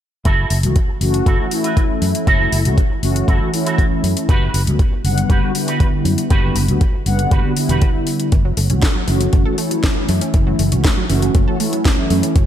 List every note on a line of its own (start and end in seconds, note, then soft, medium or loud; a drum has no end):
0.25 0.45 F#1 medium
0.25 0.57 E4 loud
0.25 0.57 F#4 medium
0.25 0.58 A4 loud
0.25 kick loud
0.25 closed hi-hat soft
0.50 0.65 F#1 medium
0.50 open hi-hat medium
0.63 0.73 C#2 medium
0.63 0.78 E3 medium
0.63 0.79 A3 medium
0.63 0.79 C#4 medium
0.63 0.79 F#4 medium
0.63 closed hi-hat medium
0.76 kick medium
0.76 closed hi-hat soft
0.88 muted clean electric guitar stroke medium
1.00 1.21 F#1 medium
1.00 1.36 E3 medium
1.00 1.36 A3 medium
1.00 1.36 C#4 medium
1.00 1.36 F#4 loud
1.00 muted clean electric guitar stroke soft
1.00 open hi-hat medium
1.14 closed hi-hat medium
1.25 1.36 F#1 medium
1.25 1.45 E4 medium
1.25 1.45 F#4 medium
1.25 1.46 A4 medium
1.25 kick loud
1.25 closed hi-hat soft
1.38 1.48 E3 medium
1.38 1.48 A3 medium
1.38 1.49 C#4 medium
1.38 1.49 F#4 loud
1.50 2.62 E3 medium
1.50 2.62 A3 medium
1.50 2.62 C#4 medium
1.50 2.62 E4 medium
1.50 open hi-hat medium
1.64 1.83 E4 medium
1.64 1.83 F#4 medium
1.64 1.84 B4 medium
1.64 closed hi-hat medium
1.77 kick medium
1.77 closed hi-hat medium
2.01 2.12 F#2 medium
2.01 muted clean electric guitar stroke soft
2.01 open hi-hat medium
2.15 closed hi-hat medium
2.26 2.47 F#1 medium
2.26 2.58 E4 loud
2.26 2.59 F#4 medium
2.26 2.59 A4 loud
2.26 kick loud
2.26 closed hi-hat soft
2.52 2.67 F#1 medium
2.52 open hi-hat loud
2.65 2.75 C#2 medium
2.65 2.80 E3 medium
2.65 2.80 A3 medium
2.65 2.80 C#4 medium
2.65 2.81 F#4 medium
2.65 closed hi-hat medium
2.78 kick loud
2.78 closed hi-hat soft
2.90 muted clean electric guitar stroke medium
3.02 3.22 F#1 medium
3.02 3.37 E3 medium
3.02 3.38 A3 medium
3.02 3.38 C#4 medium
3.02 3.38 F#4 loud
3.02 muted clean electric guitar stroke soft
3.02 open hi-hat medium
3.16 closed hi-hat medium
3.27 3.38 F#1 medium
3.27 3.47 E4 medium
3.27 3.47 F#4 medium
3.27 3.48 A4 medium
3.27 kick loud
3.27 closed hi-hat soft
3.40 3.50 E3 medium
3.40 3.50 A3 medium
3.40 3.50 C#4 medium
3.40 3.50 F#4 loud
3.52 4.27 E3 medium
3.52 4.27 A3 medium
3.52 4.27 C#4 medium
3.52 4.28 E4 medium
3.52 open hi-hat loud
3.65 3.85 E4 medium
3.65 3.85 F#4 medium
3.65 3.85 A4 medium
3.65 closed hi-hat medium
3.78 kick loud
3.78 closed hi-hat soft
4.03 4.14 F#2 medium
4.03 muted clean electric guitar stroke soft
4.03 open hi-hat medium
4.17 closed hi-hat medium
4.28 4.49 F#1 medium
4.28 4.60 F#4 loud
4.28 4.61 G4 loud
4.28 4.61 B4 loud
4.28 kick loud
4.28 closed hi-hat soft
4.54 4.68 F#1 medium
4.54 open hi-hat loud
4.66 4.76 D2 medium
4.66 4.82 D3 medium
4.66 4.82 G3 medium
4.66 4.82 B3 medium
4.66 4.82 F#4 medium
4.66 closed hi-hat medium
4.79 kick loud
4.79 closed hi-hat soft
4.91 muted clean electric guitar stroke medium
5.04 5.24 F#1 medium
5.04 5.39 D3 medium
5.04 5.39 G3 medium
5.04 5.39 B3 medium
5.04 5.40 F#5 loud
5.04 muted clean electric guitar stroke soft
5.04 open hi-hat medium
5.18 closed hi-hat medium
5.29 5.40 F#1 medium
5.29 5.48 F#4 medium
5.29 5.49 G4 medium
5.29 5.49 B4 medium
5.29 kick loud
5.29 closed hi-hat soft
5.42 5.52 D3 medium
5.42 5.52 G3 medium
5.42 5.52 B3 medium
5.42 5.52 F#4 loud
5.54 6.65 D3 medium
5.54 6.66 G3 medium
5.54 6.66 B3 medium
5.54 6.66 E4 medium
5.54 open hi-hat loud
5.67 5.86 F#4 medium
5.67 5.87 G4 medium
5.67 5.87 B4 medium
5.67 closed hi-hat medium
5.80 kick loud
5.80 closed hi-hat soft
6.05 6.15 F#2 medium
6.05 muted clean electric guitar stroke soft
6.05 open hi-hat medium
6.18 closed hi-hat medium
6.30 6.50 F#1 medium
6.30 6.62 F#4 loud
6.30 6.62 G4 loud
6.30 6.63 B4 loud
6.30 kick loud
6.30 closed hi-hat soft
6.55 6.70 F#1 medium
6.55 open hi-hat loud
6.68 6.78 D2 medium
6.68 6.83 D3 medium
6.68 6.83 G3 medium
6.68 6.84 B3 medium
6.68 6.84 F#4 medium
6.68 closed hi-hat medium
6.81 kick loud
6.81 closed hi-hat soft
6.93 muted clean electric guitar stroke medium
7.05 7.26 F#1 medium
7.05 7.41 D3 medium
7.05 7.41 G3 medium
7.05 7.41 B3 medium
7.05 7.41 F#5 loud
7.05 muted clean electric guitar stroke soft
7.05 open hi-hat medium
7.19 closed hi-hat medium
7.31 7.41 F#1 medium
7.31 7.50 F#4 medium
7.31 7.50 G4 medium
7.31 7.51 B4 medium
7.31 kick loud
7.31 closed hi-hat soft
7.44 7.53 D3 medium
7.44 7.53 G3 medium
7.44 7.54 B3 medium
7.44 7.54 F#4 loud
7.55 8.30 D3 medium
7.55 8.31 G3 medium
7.55 8.31 B3 medium
7.55 8.31 E4 medium
7.55 open hi-hat loud
7.68 7.79 E1 medium
7.68 7.88 F#4 medium
7.68 7.88 G4 medium
7.68 7.89 B4 medium
7.68 closed hi-hat medium
7.82 kick loud
7.82 closed hi-hat soft
8.06 muted clean electric guitar stroke soft
8.06 open hi-hat medium
8.20 closed hi-hat medium
8.32 8.52 F#1 medium
8.32 8.41 E3 medium
8.32 kick loud
8.32 closed hi-hat soft
8.45 8.53 F#3 loud
8.57 8.71 F#1 medium
8.57 8.63 A3 medium
8.57 open hi-hat loud
8.70 8.80 C#2 medium
8.70 8.85 E3 medium
8.70 8.85 A3 medium
8.70 8.78 C#4 medium
8.70 8.85 C#4 medium
8.70 8.86 F#4 medium
8.70 closed hi-hat medium
8.82 8.88 A3 loud
8.82 kick loud
8.82 snare loud
8.82 closed hi-hat soft
8.95 9.01 F#3 loud
9.08 9.28 F#1 medium
9.08 9.11 E3 medium
9.08 9.43 E3 medium
9.08 9.43 A3 medium
9.08 9.43 C#4 medium
9.08 9.43 F#4 loud
9.08 open hi-hat medium
9.20 9.26 F#3 medium
9.20 closed hi-hat medium
9.33 9.43 F#1 medium
9.33 9.36 A3 medium
9.33 kick loud
9.33 closed hi-hat soft
9.45 9.55 E3 medium
9.45 9.55 A3 medium
9.45 9.55 C#4 medium
9.45 9.56 F#4 loud
9.45 9.49 A4 loud
9.57 10.68 E3 medium
9.57 9.64 A3 medium
9.57 10.69 A3 medium
9.57 10.69 C#4 medium
9.57 10.69 E4 medium
9.57 open hi-hat loud
9.71 9.74 F#3 medium
9.71 closed hi-hat medium
9.84 9.89 E3 loud
9.84 kick medium
9.84 snare loud
9.84 closed hi-hat soft
9.96 10.02 F#3 medium
10.09 10.19 F#2 medium
10.09 10.14 A3 medium
10.09 open hi-hat medium
10.21 10.27 C#4 medium
10.21 closed hi-hat medium
10.34 10.54 F#1 medium
10.34 10.42 E3 medium
10.34 kick loud
10.34 closed hi-hat soft
10.47 10.55 F#3 medium
10.59 10.73 F#1 medium
10.59 10.65 A3 medium
10.59 open hi-hat loud
10.71 10.82 C#2 medium
10.71 10.87 E3 medium
10.71 10.87 A3 medium
10.71 10.80 C#4 medium
10.71 10.87 C#4 medium
10.71 10.87 F#4 medium
10.71 closed hi-hat medium
10.84 10.90 A3 loud
10.84 kick loud
10.84 snare loud
10.84 closed hi-hat medium
10.97 11.03 F#3 loud
11.09 11.29 F#1 medium
11.09 11.44 E3 medium
11.09 11.13 E3 medium
11.09 11.44 A3 medium
11.09 11.45 C#4 medium
11.09 11.45 F#4 loud
11.09 open hi-hat medium
11.22 11.28 F#3 medium
11.22 closed hi-hat medium
11.35 11.45 F#1 medium
11.35 11.38 A3 medium
11.35 kick loud
11.35 closed hi-hat soft
11.47 11.57 E3 medium
11.47 11.57 A3 medium
11.47 11.57 C#4 medium
11.47 11.57 F#4 loud
11.47 11.51 A4 loud
11.59 12.34 E3 medium
11.59 12.34 A3 medium
11.59 11.66 A3 medium
11.59 12.34 C#4 medium
11.59 12.35 E4 medium
11.59 open hi-hat loud
11.73 11.76 F#3 medium
11.73 closed hi-hat medium
11.85 11.91 E3 loud
11.85 kick medium
11.85 snare loud
11.85 closed hi-hat soft
11.98 12.03 F#3 medium
12.10 12.20 F#2 medium
12.10 12.16 A3 medium
12.10 open hi-hat medium
12.23 12.29 C#4 medium
12.23 closed hi-hat medium
12.35 12.46 F#1 medium
12.35 12.44 F#3 medium
12.35 kick loud
12.35 closed hi-hat medium